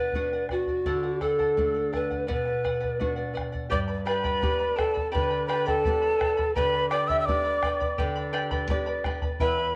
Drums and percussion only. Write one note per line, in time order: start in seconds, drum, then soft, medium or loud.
0.13 bombo low medium
0.49 bombo rim soft
0.49 bombo low soft
0.67 bombo low soft
0.85 bombo low medium
1.21 bombo rim soft
1.21 bombo low soft
1.39 bombo low soft
1.58 bombo low medium
1.94 bombo rim soft
1.94 bombo low soft
2.11 bombo low soft
2.30 bombo low medium
2.65 bombo rim soft
2.65 bombo low soft
2.84 bombo low soft
3.01 bombo low medium
3.37 bombo rim soft
3.37 bombo low soft
3.54 bombo low soft
3.72 bombo low medium
4.07 bombo rim medium
4.24 bombo low medium
4.42 bombo low medium
4.79 bombo rim medium
4.79 bombo low medium
4.97 bombo low medium
5.15 bombo low medium
5.50 bombo rim medium
5.68 bombo low medium
5.85 bombo low medium
6.21 bombo rim medium
6.21 bombo low medium
6.39 bombo low medium
6.56 bombo low medium
6.91 bombo rim medium
7.09 bombo low medium
7.28 bombo low medium
7.63 bombo rim medium
7.63 bombo low medium
7.81 bombo low medium
7.98 bombo low medium
8.34 bombo rim soft
8.51 bombo low medium
8.69 bombo low medium
9.04 bombo rim medium
9.04 bombo low medium
9.22 bombo low medium
9.40 bombo low medium